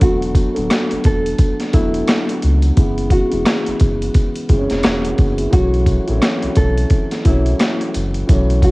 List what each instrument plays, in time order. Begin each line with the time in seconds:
0.00 sub bass E1, grand piano D3 F#3 A3 B3, nylon-string guitar F#4, kick, closed hi-hat
0.22 closed hi-hat
0.35 kick, closed hi-hat
0.53 sub bass D1, grand piano D3 F#3 A3 B3, closed hi-hat
0.70 cross-stick, snare, closed hi-hat
0.91 sub bass E1, closed hi-hat
1.04 sub bass E1, nylon-string guitar A4, kick, closed hi-hat
1.26 closed hi-hat
1.39 kick, closed hi-hat
1.60 snare, closed hi-hat
1.72 sub bass E1, grand piano D3 F#3 A3 B3, nylon-string guitar E4, kick, closed hi-hat
1.94 closed hi-hat
2.07 cross-stick, snare, closed hi-hat
2.29 closed hi-hat
2.42 sub bass C#2, closed hi-hat
2.62 closed hi-hat
2.76 sub bass F#1, grand piano C#3 E3 G#3 B3, kick, closed hi-hat
2.98 closed hi-hat
3.11 nylon-string guitar F#4, kick, closed hi-hat
3.30 sub bass E1, grand piano C#3 E3 G#3 B3, closed hi-hat
3.46 cross-stick, snare, closed hi-hat
3.67 sub bass F#1, closed hi-hat
3.80 sub bass F#1, kick, closed hi-hat
4.02 closed hi-hat
4.14 kick, closed hi-hat
4.35 closed hi-hat
4.49 sub bass F#1, grand piano C#3 E3 G#3 C4, kick, closed hi-hat
4.59 grand piano C#4
4.70 sub bass E1, snare, closed hi-hat
4.83 sub bass E1, grand piano A#3 F#4, cross-stick, snare, closed hi-hat
5.04 grand piano B3 G#4, closed hi-hat
5.18 sub bass F#1, kick, closed hi-hat
5.38 grand piano G#3 E4, closed hi-hat
5.51 sub bass B1, grand piano E3 F#3 A3 C#4, nylon-string guitar F#4, kick, closed hi-hat
5.74 closed hi-hat
5.86 kick, closed hi-hat
6.07 sub bass A1, grand piano E3 F#3 A3 C4, closed hi-hat
6.18 grand piano C#4, cross-stick
6.22 snare, closed hi-hat
6.42 sub bass B1, closed hi-hat
6.55 sub bass B1, nylon-string guitar A4, kick, closed hi-hat
6.78 closed hi-hat
6.90 kick, closed hi-hat
7.11 snare, closed hi-hat
7.24 sub bass B1, grand piano E3 F#3 A3 C#4, nylon-string guitar E4, kick, closed hi-hat
7.46 closed hi-hat
7.59 cross-stick, snare, closed hi-hat
7.81 closed hi-hat
7.94 sub bass F#1, closed hi-hat
8.14 closed hi-hat
8.27 sub bass B1, grand piano E3 F#3 A3 C#4, kick, closed hi-hat
8.50 closed hi-hat
8.62 nylon-string guitar F#4, kick, closed hi-hat